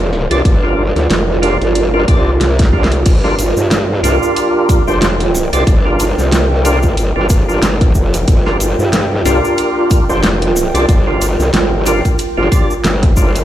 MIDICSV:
0, 0, Header, 1, 5, 480
1, 0, Start_track
1, 0, Key_signature, -2, "minor"
1, 0, Tempo, 652174
1, 331, Time_signature, 4, 2, 24, 8
1, 9892, End_track
2, 0, Start_track
2, 0, Title_t, "Ambient pad"
2, 0, Program_c, 0, 92
2, 0, Note_on_c, 0, 65, 88
2, 0, Note_on_c, 0, 70, 83
2, 0, Note_on_c, 0, 74, 86
2, 2584, Note_on_c, 0, 79, 86
2, 2610, Note_off_c, 0, 74, 0
2, 9892, Note_off_c, 0, 65, 0
2, 9892, Note_off_c, 0, 70, 0
2, 9892, Note_off_c, 0, 79, 0
2, 9892, End_track
3, 0, Start_track
3, 0, Title_t, "Tonewheel organ"
3, 0, Program_c, 1, 16
3, 228, Note_on_c, 1, 62, 85
3, 228, Note_on_c, 1, 65, 81
3, 228, Note_on_c, 1, 67, 82
3, 228, Note_on_c, 1, 74, 102
3, 311, Note_off_c, 1, 62, 0
3, 311, Note_off_c, 1, 65, 0
3, 312, Note_off_c, 1, 67, 0
3, 312, Note_off_c, 1, 74, 0
3, 466, Note_on_c, 1, 62, 85
3, 466, Note_on_c, 1, 65, 81
3, 467, Note_on_c, 1, 67, 81
3, 467, Note_on_c, 1, 70, 89
3, 611, Note_off_c, 1, 62, 0
3, 611, Note_off_c, 1, 65, 0
3, 611, Note_off_c, 1, 67, 0
3, 611, Note_off_c, 1, 70, 0
3, 1047, Note_on_c, 1, 67, 87
3, 1048, Note_on_c, 1, 65, 86
3, 1048, Note_on_c, 1, 70, 110
3, 1049, Note_on_c, 1, 62, 98
3, 1160, Note_off_c, 1, 67, 0
3, 1160, Note_off_c, 1, 70, 0
3, 1161, Note_off_c, 1, 62, 0
3, 1161, Note_off_c, 1, 65, 0
3, 1426, Note_on_c, 1, 62, 96
3, 1426, Note_on_c, 1, 67, 85
3, 1427, Note_on_c, 1, 65, 85
3, 1427, Note_on_c, 1, 70, 106
3, 1510, Note_off_c, 1, 62, 0
3, 1510, Note_off_c, 1, 65, 0
3, 1510, Note_off_c, 1, 67, 0
3, 1510, Note_off_c, 1, 70, 0
3, 1528, Note_on_c, 1, 62, 88
3, 1528, Note_on_c, 1, 67, 78
3, 1529, Note_on_c, 1, 65, 77
3, 1530, Note_on_c, 1, 74, 97
3, 1697, Note_off_c, 1, 62, 0
3, 1697, Note_off_c, 1, 67, 0
3, 1698, Note_off_c, 1, 65, 0
3, 1698, Note_off_c, 1, 74, 0
3, 2010, Note_on_c, 1, 62, 78
3, 2010, Note_on_c, 1, 65, 69
3, 2010, Note_on_c, 1, 70, 89
3, 2011, Note_on_c, 1, 67, 70
3, 2121, Note_off_c, 1, 62, 0
3, 2121, Note_off_c, 1, 65, 0
3, 2122, Note_off_c, 1, 67, 0
3, 2122, Note_off_c, 1, 70, 0
3, 2384, Note_on_c, 1, 62, 90
3, 2384, Note_on_c, 1, 70, 107
3, 2385, Note_on_c, 1, 65, 86
3, 2385, Note_on_c, 1, 67, 85
3, 2470, Note_off_c, 1, 62, 0
3, 2470, Note_off_c, 1, 65, 0
3, 2470, Note_off_c, 1, 67, 0
3, 2470, Note_off_c, 1, 70, 0
3, 2969, Note_on_c, 1, 62, 92
3, 2969, Note_on_c, 1, 65, 82
3, 2969, Note_on_c, 1, 70, 104
3, 2970, Note_on_c, 1, 67, 84
3, 3554, Note_off_c, 1, 62, 0
3, 3554, Note_off_c, 1, 70, 0
3, 3555, Note_off_c, 1, 65, 0
3, 3555, Note_off_c, 1, 67, 0
3, 3589, Note_on_c, 1, 62, 94
3, 3589, Note_on_c, 1, 65, 81
3, 3589, Note_on_c, 1, 67, 82
3, 3589, Note_on_c, 1, 72, 102
3, 3732, Note_off_c, 1, 62, 0
3, 3732, Note_off_c, 1, 65, 0
3, 3732, Note_off_c, 1, 67, 0
3, 3732, Note_off_c, 1, 72, 0
3, 4069, Note_on_c, 1, 62, 90
3, 4069, Note_on_c, 1, 67, 82
3, 4070, Note_on_c, 1, 65, 84
3, 4070, Note_on_c, 1, 74, 95
3, 4152, Note_off_c, 1, 62, 0
3, 4152, Note_off_c, 1, 65, 0
3, 4152, Note_off_c, 1, 67, 0
3, 4153, Note_off_c, 1, 74, 0
3, 4308, Note_on_c, 1, 62, 84
3, 4308, Note_on_c, 1, 65, 79
3, 4308, Note_on_c, 1, 67, 79
3, 4308, Note_on_c, 1, 70, 93
3, 4451, Note_off_c, 1, 62, 0
3, 4451, Note_off_c, 1, 65, 0
3, 4451, Note_off_c, 1, 67, 0
3, 4452, Note_off_c, 1, 70, 0
3, 4892, Note_on_c, 1, 65, 92
3, 4892, Note_on_c, 1, 67, 92
3, 4892, Note_on_c, 1, 70, 113
3, 4893, Note_on_c, 1, 62, 105
3, 5002, Note_off_c, 1, 65, 0
3, 5003, Note_off_c, 1, 62, 0
3, 5003, Note_off_c, 1, 67, 0
3, 5003, Note_off_c, 1, 70, 0
3, 5269, Note_on_c, 1, 62, 91
3, 5269, Note_on_c, 1, 65, 88
3, 5269, Note_on_c, 1, 67, 93
3, 5270, Note_on_c, 1, 70, 101
3, 5352, Note_off_c, 1, 62, 0
3, 5352, Note_off_c, 1, 65, 0
3, 5352, Note_off_c, 1, 67, 0
3, 5352, Note_off_c, 1, 70, 0
3, 5510, Note_on_c, 1, 62, 82
3, 5510, Note_on_c, 1, 65, 67
3, 5510, Note_on_c, 1, 67, 75
3, 5510, Note_on_c, 1, 70, 87
3, 5652, Note_off_c, 1, 70, 0
3, 5653, Note_off_c, 1, 62, 0
3, 5653, Note_off_c, 1, 65, 0
3, 5653, Note_off_c, 1, 67, 0
3, 6229, Note_on_c, 1, 67, 91
3, 6230, Note_on_c, 1, 62, 98
3, 6230, Note_on_c, 1, 65, 92
3, 6230, Note_on_c, 1, 70, 106
3, 6312, Note_off_c, 1, 62, 0
3, 6312, Note_off_c, 1, 65, 0
3, 6312, Note_off_c, 1, 67, 0
3, 6312, Note_off_c, 1, 70, 0
3, 6811, Note_on_c, 1, 67, 78
3, 6811, Note_on_c, 1, 70, 99
3, 6812, Note_on_c, 1, 62, 89
3, 6812, Note_on_c, 1, 65, 81
3, 7395, Note_off_c, 1, 67, 0
3, 7395, Note_off_c, 1, 70, 0
3, 7396, Note_off_c, 1, 62, 0
3, 7396, Note_off_c, 1, 65, 0
3, 7430, Note_on_c, 1, 67, 82
3, 7431, Note_on_c, 1, 65, 82
3, 7431, Note_on_c, 1, 72, 98
3, 7432, Note_on_c, 1, 62, 90
3, 7573, Note_off_c, 1, 62, 0
3, 7573, Note_off_c, 1, 65, 0
3, 7573, Note_off_c, 1, 67, 0
3, 7573, Note_off_c, 1, 72, 0
3, 7908, Note_on_c, 1, 65, 81
3, 7908, Note_on_c, 1, 67, 77
3, 7909, Note_on_c, 1, 62, 93
3, 7909, Note_on_c, 1, 74, 100
3, 7992, Note_off_c, 1, 62, 0
3, 7992, Note_off_c, 1, 65, 0
3, 7992, Note_off_c, 1, 67, 0
3, 7992, Note_off_c, 1, 74, 0
3, 8149, Note_on_c, 1, 62, 87
3, 8149, Note_on_c, 1, 65, 79
3, 8149, Note_on_c, 1, 67, 74
3, 8149, Note_on_c, 1, 70, 89
3, 8292, Note_off_c, 1, 62, 0
3, 8292, Note_off_c, 1, 65, 0
3, 8292, Note_off_c, 1, 67, 0
3, 8292, Note_off_c, 1, 70, 0
3, 8731, Note_on_c, 1, 65, 91
3, 8732, Note_on_c, 1, 62, 100
3, 8732, Note_on_c, 1, 67, 93
3, 8732, Note_on_c, 1, 70, 113
3, 8842, Note_off_c, 1, 62, 0
3, 8842, Note_off_c, 1, 65, 0
3, 8842, Note_off_c, 1, 67, 0
3, 8842, Note_off_c, 1, 70, 0
3, 9108, Note_on_c, 1, 62, 97
3, 9108, Note_on_c, 1, 65, 84
3, 9108, Note_on_c, 1, 67, 84
3, 9108, Note_on_c, 1, 70, 110
3, 9190, Note_off_c, 1, 62, 0
3, 9190, Note_off_c, 1, 65, 0
3, 9191, Note_off_c, 1, 67, 0
3, 9191, Note_off_c, 1, 70, 0
3, 9211, Note_on_c, 1, 65, 79
3, 9211, Note_on_c, 1, 67, 77
3, 9212, Note_on_c, 1, 62, 86
3, 9212, Note_on_c, 1, 74, 94
3, 9379, Note_off_c, 1, 62, 0
3, 9379, Note_off_c, 1, 65, 0
3, 9379, Note_off_c, 1, 67, 0
3, 9379, Note_off_c, 1, 74, 0
3, 9691, Note_on_c, 1, 67, 70
3, 9691, Note_on_c, 1, 70, 86
3, 9692, Note_on_c, 1, 62, 77
3, 9692, Note_on_c, 1, 65, 70
3, 9802, Note_off_c, 1, 62, 0
3, 9802, Note_off_c, 1, 65, 0
3, 9802, Note_off_c, 1, 67, 0
3, 9802, Note_off_c, 1, 70, 0
3, 9892, End_track
4, 0, Start_track
4, 0, Title_t, "Wobble bass"
4, 0, Program_c, 2, 39
4, 0, Note_on_c, 2, 29, 98
4, 206, Note_off_c, 2, 29, 0
4, 226, Note_on_c, 2, 36, 94
4, 314, Note_off_c, 2, 36, 0
4, 331, Note_on_c, 2, 31, 98
4, 686, Note_off_c, 2, 31, 0
4, 706, Note_on_c, 2, 38, 96
4, 794, Note_off_c, 2, 38, 0
4, 809, Note_on_c, 2, 29, 94
4, 1165, Note_off_c, 2, 29, 0
4, 1187, Note_on_c, 2, 31, 97
4, 1514, Note_off_c, 2, 31, 0
4, 1533, Note_on_c, 2, 36, 102
4, 2236, Note_off_c, 2, 36, 0
4, 2253, Note_on_c, 2, 31, 92
4, 2607, Note_off_c, 2, 31, 0
4, 2627, Note_on_c, 2, 43, 97
4, 2954, Note_off_c, 2, 43, 0
4, 2969, Note_on_c, 2, 36, 98
4, 3085, Note_off_c, 2, 36, 0
4, 3589, Note_on_c, 2, 29, 96
4, 4046, Note_off_c, 2, 29, 0
4, 4069, Note_on_c, 2, 36, 93
4, 4155, Note_off_c, 2, 36, 0
4, 4172, Note_on_c, 2, 31, 97
4, 4527, Note_off_c, 2, 31, 0
4, 4549, Note_on_c, 2, 36, 95
4, 5247, Note_off_c, 2, 36, 0
4, 5269, Note_on_c, 2, 31, 95
4, 5595, Note_off_c, 2, 31, 0
4, 5611, Note_on_c, 2, 31, 93
4, 5835, Note_off_c, 2, 31, 0
4, 5852, Note_on_c, 2, 29, 97
4, 6075, Note_off_c, 2, 29, 0
4, 6093, Note_on_c, 2, 31, 97
4, 6447, Note_off_c, 2, 31, 0
4, 6468, Note_on_c, 2, 43, 95
4, 6795, Note_off_c, 2, 43, 0
4, 6811, Note_on_c, 2, 36, 97
4, 6926, Note_off_c, 2, 36, 0
4, 7429, Note_on_c, 2, 29, 97
4, 7887, Note_off_c, 2, 29, 0
4, 7907, Note_on_c, 2, 36, 97
4, 7994, Note_off_c, 2, 36, 0
4, 8012, Note_on_c, 2, 31, 102
4, 8367, Note_off_c, 2, 31, 0
4, 8386, Note_on_c, 2, 36, 96
4, 8474, Note_off_c, 2, 36, 0
4, 8491, Note_on_c, 2, 31, 94
4, 8846, Note_off_c, 2, 31, 0
4, 9109, Note_on_c, 2, 31, 88
4, 9195, Note_off_c, 2, 31, 0
4, 9451, Note_on_c, 2, 31, 96
4, 9892, Note_off_c, 2, 31, 0
4, 9892, End_track
5, 0, Start_track
5, 0, Title_t, "Drums"
5, 94, Note_on_c, 9, 40, 42
5, 167, Note_off_c, 9, 40, 0
5, 228, Note_on_c, 9, 42, 69
5, 301, Note_off_c, 9, 42, 0
5, 332, Note_on_c, 9, 36, 119
5, 333, Note_on_c, 9, 42, 78
5, 405, Note_off_c, 9, 36, 0
5, 406, Note_off_c, 9, 42, 0
5, 709, Note_on_c, 9, 38, 36
5, 709, Note_on_c, 9, 42, 35
5, 782, Note_off_c, 9, 38, 0
5, 782, Note_off_c, 9, 42, 0
5, 813, Note_on_c, 9, 38, 117
5, 813, Note_on_c, 9, 42, 81
5, 887, Note_off_c, 9, 38, 0
5, 887, Note_off_c, 9, 42, 0
5, 1052, Note_on_c, 9, 42, 65
5, 1125, Note_off_c, 9, 42, 0
5, 1189, Note_on_c, 9, 42, 38
5, 1263, Note_off_c, 9, 42, 0
5, 1291, Note_on_c, 9, 42, 79
5, 1364, Note_off_c, 9, 42, 0
5, 1531, Note_on_c, 9, 42, 66
5, 1532, Note_on_c, 9, 36, 105
5, 1605, Note_off_c, 9, 42, 0
5, 1606, Note_off_c, 9, 36, 0
5, 1772, Note_on_c, 9, 38, 71
5, 1772, Note_on_c, 9, 42, 84
5, 1846, Note_off_c, 9, 38, 0
5, 1846, Note_off_c, 9, 42, 0
5, 1907, Note_on_c, 9, 42, 64
5, 1909, Note_on_c, 9, 36, 110
5, 1931, Note_on_c, 9, 38, 82
5, 1981, Note_off_c, 9, 42, 0
5, 1983, Note_off_c, 9, 36, 0
5, 2005, Note_off_c, 9, 38, 0
5, 2012, Note_on_c, 9, 36, 58
5, 2086, Note_off_c, 9, 36, 0
5, 2091, Note_on_c, 9, 38, 96
5, 2147, Note_on_c, 9, 42, 68
5, 2164, Note_off_c, 9, 38, 0
5, 2220, Note_off_c, 9, 42, 0
5, 2250, Note_on_c, 9, 42, 83
5, 2250, Note_on_c, 9, 49, 82
5, 2252, Note_on_c, 9, 36, 126
5, 2255, Note_on_c, 9, 82, 42
5, 2323, Note_off_c, 9, 42, 0
5, 2323, Note_off_c, 9, 49, 0
5, 2326, Note_off_c, 9, 36, 0
5, 2329, Note_off_c, 9, 82, 0
5, 2388, Note_on_c, 9, 38, 38
5, 2462, Note_off_c, 9, 38, 0
5, 2492, Note_on_c, 9, 42, 69
5, 2495, Note_on_c, 9, 82, 89
5, 2566, Note_off_c, 9, 42, 0
5, 2568, Note_off_c, 9, 82, 0
5, 2625, Note_on_c, 9, 82, 54
5, 2699, Note_off_c, 9, 82, 0
5, 2732, Note_on_c, 9, 38, 116
5, 2732, Note_on_c, 9, 42, 83
5, 2732, Note_on_c, 9, 82, 38
5, 2805, Note_off_c, 9, 38, 0
5, 2805, Note_off_c, 9, 42, 0
5, 2806, Note_off_c, 9, 82, 0
5, 2972, Note_on_c, 9, 40, 39
5, 2972, Note_on_c, 9, 42, 72
5, 2977, Note_on_c, 9, 82, 84
5, 3046, Note_off_c, 9, 40, 0
5, 3046, Note_off_c, 9, 42, 0
5, 3051, Note_off_c, 9, 82, 0
5, 3112, Note_on_c, 9, 82, 54
5, 3185, Note_off_c, 9, 82, 0
5, 3212, Note_on_c, 9, 42, 82
5, 3215, Note_on_c, 9, 82, 43
5, 3286, Note_off_c, 9, 42, 0
5, 3289, Note_off_c, 9, 82, 0
5, 3453, Note_on_c, 9, 36, 103
5, 3453, Note_on_c, 9, 42, 73
5, 3454, Note_on_c, 9, 82, 91
5, 3527, Note_off_c, 9, 36, 0
5, 3527, Note_off_c, 9, 42, 0
5, 3528, Note_off_c, 9, 82, 0
5, 3589, Note_on_c, 9, 82, 51
5, 3663, Note_off_c, 9, 82, 0
5, 3693, Note_on_c, 9, 38, 121
5, 3693, Note_on_c, 9, 42, 84
5, 3700, Note_on_c, 9, 82, 39
5, 3766, Note_off_c, 9, 38, 0
5, 3766, Note_off_c, 9, 42, 0
5, 3774, Note_off_c, 9, 82, 0
5, 3830, Note_on_c, 9, 42, 67
5, 3904, Note_off_c, 9, 42, 0
5, 3934, Note_on_c, 9, 40, 44
5, 3937, Note_on_c, 9, 82, 93
5, 4008, Note_off_c, 9, 40, 0
5, 4010, Note_off_c, 9, 82, 0
5, 4070, Note_on_c, 9, 42, 73
5, 4072, Note_on_c, 9, 82, 57
5, 4144, Note_off_c, 9, 42, 0
5, 4146, Note_off_c, 9, 82, 0
5, 4173, Note_on_c, 9, 36, 127
5, 4174, Note_on_c, 9, 42, 81
5, 4174, Note_on_c, 9, 82, 41
5, 4247, Note_off_c, 9, 36, 0
5, 4247, Note_off_c, 9, 42, 0
5, 4248, Note_off_c, 9, 82, 0
5, 4413, Note_on_c, 9, 82, 95
5, 4414, Note_on_c, 9, 42, 67
5, 4486, Note_off_c, 9, 82, 0
5, 4488, Note_off_c, 9, 42, 0
5, 4551, Note_on_c, 9, 38, 38
5, 4555, Note_on_c, 9, 82, 57
5, 4625, Note_off_c, 9, 38, 0
5, 4628, Note_off_c, 9, 82, 0
5, 4654, Note_on_c, 9, 38, 127
5, 4654, Note_on_c, 9, 42, 84
5, 4665, Note_on_c, 9, 82, 43
5, 4727, Note_off_c, 9, 38, 0
5, 4727, Note_off_c, 9, 42, 0
5, 4739, Note_off_c, 9, 82, 0
5, 4894, Note_on_c, 9, 42, 66
5, 4896, Note_on_c, 9, 82, 89
5, 4968, Note_off_c, 9, 42, 0
5, 4970, Note_off_c, 9, 82, 0
5, 5025, Note_on_c, 9, 82, 56
5, 5030, Note_on_c, 9, 36, 64
5, 5098, Note_off_c, 9, 82, 0
5, 5104, Note_off_c, 9, 36, 0
5, 5132, Note_on_c, 9, 42, 84
5, 5140, Note_on_c, 9, 82, 40
5, 5206, Note_off_c, 9, 42, 0
5, 5214, Note_off_c, 9, 82, 0
5, 5368, Note_on_c, 9, 82, 96
5, 5373, Note_on_c, 9, 36, 108
5, 5374, Note_on_c, 9, 42, 70
5, 5441, Note_off_c, 9, 82, 0
5, 5446, Note_off_c, 9, 36, 0
5, 5447, Note_off_c, 9, 42, 0
5, 5514, Note_on_c, 9, 82, 48
5, 5588, Note_off_c, 9, 82, 0
5, 5611, Note_on_c, 9, 38, 126
5, 5611, Note_on_c, 9, 42, 83
5, 5616, Note_on_c, 9, 82, 44
5, 5685, Note_off_c, 9, 38, 0
5, 5685, Note_off_c, 9, 42, 0
5, 5689, Note_off_c, 9, 82, 0
5, 5749, Note_on_c, 9, 42, 66
5, 5750, Note_on_c, 9, 36, 113
5, 5823, Note_off_c, 9, 36, 0
5, 5823, Note_off_c, 9, 42, 0
5, 5849, Note_on_c, 9, 82, 91
5, 5853, Note_on_c, 9, 36, 63
5, 5922, Note_off_c, 9, 82, 0
5, 5926, Note_off_c, 9, 36, 0
5, 5990, Note_on_c, 9, 42, 70
5, 5990, Note_on_c, 9, 82, 58
5, 6064, Note_off_c, 9, 42, 0
5, 6064, Note_off_c, 9, 82, 0
5, 6091, Note_on_c, 9, 82, 44
5, 6092, Note_on_c, 9, 42, 79
5, 6093, Note_on_c, 9, 36, 127
5, 6165, Note_off_c, 9, 42, 0
5, 6165, Note_off_c, 9, 82, 0
5, 6167, Note_off_c, 9, 36, 0
5, 6228, Note_on_c, 9, 38, 40
5, 6302, Note_off_c, 9, 38, 0
5, 6331, Note_on_c, 9, 42, 70
5, 6335, Note_on_c, 9, 82, 101
5, 6405, Note_off_c, 9, 42, 0
5, 6408, Note_off_c, 9, 82, 0
5, 6472, Note_on_c, 9, 82, 49
5, 6546, Note_off_c, 9, 82, 0
5, 6571, Note_on_c, 9, 82, 41
5, 6572, Note_on_c, 9, 38, 123
5, 6572, Note_on_c, 9, 42, 81
5, 6644, Note_off_c, 9, 82, 0
5, 6646, Note_off_c, 9, 38, 0
5, 6646, Note_off_c, 9, 42, 0
5, 6812, Note_on_c, 9, 40, 38
5, 6812, Note_on_c, 9, 42, 68
5, 6812, Note_on_c, 9, 82, 89
5, 6886, Note_off_c, 9, 40, 0
5, 6886, Note_off_c, 9, 42, 0
5, 6886, Note_off_c, 9, 82, 0
5, 6951, Note_on_c, 9, 82, 57
5, 7025, Note_off_c, 9, 82, 0
5, 7048, Note_on_c, 9, 82, 38
5, 7051, Note_on_c, 9, 42, 85
5, 7122, Note_off_c, 9, 82, 0
5, 7125, Note_off_c, 9, 42, 0
5, 7290, Note_on_c, 9, 82, 89
5, 7292, Note_on_c, 9, 36, 105
5, 7292, Note_on_c, 9, 42, 70
5, 7364, Note_off_c, 9, 82, 0
5, 7366, Note_off_c, 9, 36, 0
5, 7366, Note_off_c, 9, 42, 0
5, 7429, Note_on_c, 9, 82, 56
5, 7503, Note_off_c, 9, 82, 0
5, 7527, Note_on_c, 9, 82, 42
5, 7532, Note_on_c, 9, 38, 126
5, 7532, Note_on_c, 9, 42, 84
5, 7601, Note_off_c, 9, 82, 0
5, 7606, Note_off_c, 9, 38, 0
5, 7606, Note_off_c, 9, 42, 0
5, 7670, Note_on_c, 9, 42, 62
5, 7743, Note_off_c, 9, 42, 0
5, 7773, Note_on_c, 9, 40, 41
5, 7773, Note_on_c, 9, 82, 98
5, 7847, Note_off_c, 9, 40, 0
5, 7847, Note_off_c, 9, 82, 0
5, 7911, Note_on_c, 9, 42, 68
5, 7911, Note_on_c, 9, 82, 56
5, 7985, Note_off_c, 9, 42, 0
5, 7985, Note_off_c, 9, 82, 0
5, 8012, Note_on_c, 9, 36, 127
5, 8013, Note_on_c, 9, 42, 80
5, 8013, Note_on_c, 9, 82, 42
5, 8086, Note_off_c, 9, 36, 0
5, 8086, Note_off_c, 9, 42, 0
5, 8087, Note_off_c, 9, 82, 0
5, 8254, Note_on_c, 9, 42, 68
5, 8254, Note_on_c, 9, 82, 101
5, 8327, Note_off_c, 9, 82, 0
5, 8328, Note_off_c, 9, 42, 0
5, 8390, Note_on_c, 9, 38, 39
5, 8390, Note_on_c, 9, 82, 51
5, 8463, Note_off_c, 9, 38, 0
5, 8463, Note_off_c, 9, 82, 0
5, 8488, Note_on_c, 9, 82, 36
5, 8491, Note_on_c, 9, 38, 123
5, 8491, Note_on_c, 9, 42, 80
5, 8562, Note_off_c, 9, 82, 0
5, 8564, Note_off_c, 9, 38, 0
5, 8564, Note_off_c, 9, 42, 0
5, 8729, Note_on_c, 9, 82, 108
5, 8733, Note_on_c, 9, 42, 63
5, 8803, Note_off_c, 9, 82, 0
5, 8806, Note_off_c, 9, 42, 0
5, 8869, Note_on_c, 9, 42, 36
5, 8869, Note_on_c, 9, 82, 56
5, 8870, Note_on_c, 9, 36, 66
5, 8942, Note_off_c, 9, 82, 0
5, 8943, Note_off_c, 9, 42, 0
5, 8944, Note_off_c, 9, 36, 0
5, 8969, Note_on_c, 9, 82, 44
5, 8972, Note_on_c, 9, 42, 76
5, 9042, Note_off_c, 9, 82, 0
5, 9045, Note_off_c, 9, 42, 0
5, 9213, Note_on_c, 9, 36, 108
5, 9214, Note_on_c, 9, 42, 62
5, 9216, Note_on_c, 9, 82, 100
5, 9287, Note_off_c, 9, 36, 0
5, 9287, Note_off_c, 9, 42, 0
5, 9290, Note_off_c, 9, 82, 0
5, 9351, Note_on_c, 9, 82, 52
5, 9424, Note_off_c, 9, 82, 0
5, 9450, Note_on_c, 9, 82, 40
5, 9453, Note_on_c, 9, 38, 127
5, 9453, Note_on_c, 9, 42, 80
5, 9524, Note_off_c, 9, 82, 0
5, 9526, Note_off_c, 9, 38, 0
5, 9526, Note_off_c, 9, 42, 0
5, 9588, Note_on_c, 9, 42, 58
5, 9590, Note_on_c, 9, 36, 112
5, 9662, Note_off_c, 9, 42, 0
5, 9663, Note_off_c, 9, 36, 0
5, 9688, Note_on_c, 9, 82, 102
5, 9693, Note_on_c, 9, 36, 63
5, 9762, Note_off_c, 9, 82, 0
5, 9767, Note_off_c, 9, 36, 0
5, 9829, Note_on_c, 9, 42, 67
5, 9831, Note_on_c, 9, 82, 57
5, 9892, Note_off_c, 9, 42, 0
5, 9892, Note_off_c, 9, 82, 0
5, 9892, End_track
0, 0, End_of_file